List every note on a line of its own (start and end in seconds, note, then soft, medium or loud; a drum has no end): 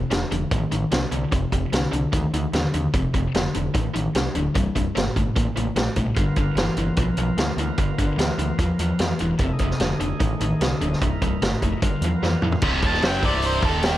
0.10 0.23 F1 medium
0.10 0.28 F2 medium
0.10 0.29 D3 medium
0.10 snare loud
0.10 closed hi-hat medium
0.31 0.43 F1 medium
0.31 0.49 F2 medium
0.31 0.49 D3 medium
0.31 closed hi-hat medium
0.51 0.63 A1 medium
0.51 0.69 F2 medium
0.51 0.70 D#3 medium
0.51 kick loud
0.51 closed hi-hat medium
0.71 0.84 A1 medium
0.71 0.89 F2 medium
0.71 0.90 D#3 medium
0.71 closed hi-hat medium
0.91 1.04 C2 medium
0.91 1.10 F2 medium
0.91 1.10 D3 medium
0.91 snare loud
0.91 closed hi-hat medium
1.12 1.24 C2 medium
1.12 1.30 F2 medium
1.12 1.30 D3 medium
1.12 closed hi-hat medium
1.32 1.44 F1 medium
1.32 1.50 F2 medium
1.32 1.50 C3 medium
1.32 kick loud
1.32 closed hi-hat medium
1.52 1.65 F1 medium
1.52 1.71 F2 medium
1.52 1.71 C3 medium
1.52 kick medium
1.52 closed hi-hat medium
1.73 1.85 C2 medium
1.73 1.91 F2 medium
1.73 1.91 D3 medium
1.73 snare loud
1.73 closed hi-hat medium
1.92 2.05 C2 medium
1.92 2.10 F2 medium
1.92 2.11 D3 medium
1.92 closed hi-hat medium
2.13 2.25 D2 medium
2.13 2.31 F2 medium
2.13 2.31 D#3 medium
2.13 kick loud
2.13 closed hi-hat medium
2.34 2.46 D2 medium
2.34 2.52 F2 medium
2.34 2.52 D#3 medium
2.34 closed hi-hat medium
2.53 2.65 D#2 medium
2.53 2.72 F2 medium
2.53 2.72 D3 medium
2.53 snare loud
2.53 closed hi-hat medium
2.74 2.86 D#2 medium
2.74 2.92 F2 medium
2.74 2.92 D3 medium
2.74 closed hi-hat medium
2.94 3.06 F1 medium
2.94 3.12 F2 medium
2.94 3.12 C3 medium
2.94 kick loud
2.94 closed hi-hat medium
3.14 3.26 F1 medium
3.14 3.32 F2 medium
3.14 3.32 C3 medium
3.14 kick medium
3.14 closed hi-hat medium
3.35 3.47 F1 medium
3.35 3.53 F2 medium
3.35 3.53 D3 medium
3.35 snare loud
3.35 closed hi-hat medium
3.54 3.67 F1 medium
3.54 3.73 F2 medium
3.54 3.73 D3 medium
3.54 closed hi-hat medium
3.74 3.87 A1 medium
3.74 3.92 F2 medium
3.74 3.93 D#3 medium
3.74 kick loud
3.74 closed hi-hat medium
3.94 4.07 A1 medium
3.94 4.12 F2 medium
3.94 4.13 D#3 medium
3.94 closed hi-hat medium
4.15 4.27 C2 medium
4.15 4.33 F2 medium
4.15 4.33 D3 medium
4.15 snare loud
4.15 closed hi-hat medium
4.35 4.47 D1 medium
4.35 4.53 F2 medium
4.35 4.53 D3 medium
4.35 closed hi-hat medium
4.54 4.67 C1 medium
4.54 4.73 C2 medium
4.54 4.73 G2 medium
4.54 kick loud
4.54 closed hi-hat medium
4.75 4.88 C1 medium
4.75 4.93 C2 medium
4.75 4.94 G2 medium
4.75 kick medium
4.75 closed hi-hat medium
4.95 5.09 G1 medium
4.95 5.13 C2 medium
4.95 5.14 A2 medium
4.95 snare loud
4.95 closed hi-hat medium
5.16 5.28 G1 medium
5.16 5.34 C2 medium
5.16 5.34 A2 medium
5.16 kick medium
5.16 closed hi-hat medium
5.36 5.49 A1 medium
5.36 5.54 C2 medium
5.36 5.54 A#2 medium
5.36 kick loud
5.36 closed hi-hat medium
5.56 5.69 A1 medium
5.56 5.74 C2 medium
5.56 5.75 A#2 medium
5.56 closed hi-hat medium
5.76 5.88 A#1 medium
5.76 5.95 C2 medium
5.76 5.95 A2 medium
5.76 snare loud
5.76 closed hi-hat medium
5.96 6.09 A#1 medium
5.96 6.15 C2 medium
5.96 6.15 A2 medium
5.96 kick medium
5.96 closed hi-hat medium
6.15 6.29 G1 medium
6.15 6.35 G2 medium
6.15 6.35 D3 medium
6.15 9.36 B3 medium
6.15 9.36 F4 medium
6.15 9.36 A#4 medium
6.15 kick loud
6.15 closed hi-hat medium
6.36 6.49 G1 medium
6.36 6.55 G2 medium
6.36 6.55 D3 medium
6.36 kick medium
6.36 closed hi-hat medium
6.55 6.68 G1 medium
6.55 6.76 G2 medium
6.55 6.76 E3 medium
6.55 snare loud
6.55 closed hi-hat medium
6.77 6.89 G1 medium
6.77 6.96 G2 medium
6.77 6.96 E3 medium
6.77 closed hi-hat medium
6.97 7.10 B1 medium
6.97 7.16 G2 medium
6.97 7.16 F3 medium
6.97 kick loud
6.97 closed hi-hat medium
7.17 7.30 B1 medium
7.17 7.36 G2 medium
7.17 7.36 F3 medium
7.17 closed hi-hat medium
7.37 7.50 D2 medium
7.37 7.56 G2 medium
7.37 7.56 E3 medium
7.37 snare loud
7.37 closed hi-hat medium
7.57 7.69 D2 medium
7.57 7.77 G2 medium
7.57 7.77 E3 medium
7.57 closed hi-hat medium
7.78 7.91 G1 medium
7.78 7.97 G2 medium
7.78 7.97 D3 medium
7.78 kick loud
7.78 closed hi-hat medium
7.98 8.11 G1 medium
7.98 8.17 G2 medium
7.98 8.17 D3 medium
7.98 kick medium
7.98 closed hi-hat medium
8.18 8.30 D2 medium
8.18 8.37 G2 medium
8.18 8.37 E3 medium
8.18 snare loud
8.18 closed hi-hat medium
8.38 8.51 D2 medium
8.38 8.57 G2 medium
8.38 8.57 E3 medium
8.38 closed hi-hat medium
8.59 8.71 E2 medium
8.59 8.78 G2 medium
8.59 8.78 F3 medium
8.59 kick medium
8.59 closed hi-hat medium
8.79 8.91 E2 medium
8.79 8.98 G2 medium
8.79 8.98 F3 medium
8.79 closed hi-hat medium
8.99 9.12 F2 medium
8.99 9.18 G2 medium
8.99 9.18 E3 medium
8.99 snare loud
8.99 closed hi-hat medium
9.19 9.32 E1 medium
9.19 9.38 G2 medium
9.19 9.38 E3 medium
9.19 closed hi-hat medium
9.37 9.52 F1 medium
9.37 9.58 F2 medium
9.37 9.58 C3 medium
9.37 9.52 A#3 medium
9.37 9.52 E4 medium
9.37 9.52 A4 medium
9.37 kick loud
9.37 closed hi-hat medium
9.52 10.99 A3 medium
9.52 10.99 D#4 medium
9.52 11.00 G#4 medium
9.59 9.72 F1 medium
9.59 9.78 F2 medium
9.59 9.79 C3 medium
9.59 kick medium
9.59 closed hi-hat medium
9.71 snare soft
9.80 9.92 F1 medium
9.80 9.98 F2 medium
9.80 9.99 D3 medium
9.80 snare loud
9.80 closed hi-hat medium
10.00 10.12 F1 medium
10.00 10.18 F2 medium
10.00 10.19 D3 medium
10.00 closed hi-hat medium
10.20 10.33 A1 medium
10.20 10.38 F2 medium
10.20 10.39 D#3 medium
10.20 kick loud
10.20 closed hi-hat medium
10.40 10.53 A1 medium
10.40 10.59 F2 medium
10.40 10.59 D#3 medium
10.40 closed hi-hat medium
10.61 10.73 C2 medium
10.61 10.79 F2 medium
10.61 10.79 D3 medium
10.61 snare loud
10.61 closed hi-hat medium
10.81 10.93 D1 medium
10.81 10.99 F2 medium
10.81 11.00 D3 medium
10.81 closed hi-hat soft
10.93 snare soft
11.00 11.14 C1 medium
11.00 11.20 C2 medium
11.00 11.20 G2 medium
11.00 11.81 D#4 medium
11.00 11.81 E4 medium
11.00 11.80 A#4 medium
11.00 kick medium
11.00 closed hi-hat medium
11.22 11.34 C1 medium
11.22 11.40 C2 medium
11.22 11.40 G2 medium
11.22 kick medium
11.22 closed hi-hat medium
11.42 11.54 G1 medium
11.42 11.60 C2 medium
11.42 11.60 A2 medium
11.42 snare loud
11.42 closed hi-hat medium
11.62 11.75 F1 medium
11.62 11.80 C2 medium
11.62 11.81 A2 medium
11.62 kick medium
11.62 closed hi-hat medium
11.82 11.94 G1 medium
11.82 12.01 G2 medium
11.82 12.01 D3 medium
11.82 12.62 B3 medium
11.82 12.62 F4 medium
11.82 12.62 A#4 medium
11.82 kick loud
11.82 closed hi-hat medium
12.01 12.14 E2 medium
12.01 12.21 G2 medium
12.01 12.21 F3 medium
12.01 closed hi-hat medium
12.23 12.35 F2 medium
12.23 12.41 G2 medium
12.23 12.41 E3 medium
12.23 snare medium
12.42 12.55 F2 medium
12.42 12.61 G2 medium
12.42 12.61 E3 medium
12.42 mid tom medium
12.52 floor tom medium
12.62 12.81 C1 medium
12.62 12.82 C2 medium
12.62 12.83 C3 medium
12.62 13.98 D#4 medium
12.62 13.98 G4 medium
12.62 13.98 A#4 medium
12.62 kick loud
12.62 crash loud
12.82 13.01 D#1 medium
12.82 13.02 D#2 medium
12.82 13.03 D#3 medium
12.82 13.04 A5 medium
12.82 kick medium
12.82 open hi-hat medium
12.94 snare soft
13.02 13.21 F#1 medium
13.02 13.22 F#2 medium
13.02 13.23 F#3 medium
13.02 13.24 G5 medium
13.02 snare loud
13.02 open hi-hat medium
13.23 13.60 C1 medium
13.23 13.63 C2 medium
13.23 13.63 C3 medium
13.23 13.44 D5 medium
13.23 kick loud
13.23 open hi-hat medium
13.42 13.64 C5 medium
13.42 open hi-hat medium
13.62 13.98 D#1 medium
13.62 13.98 D#2 medium
13.62 13.98 D#3 medium
13.62 13.84 A4 medium
13.62 kick loud
13.62 open hi-hat soft
13.83 13.98 G4 medium
13.83 snare loud
13.83 open hi-hat medium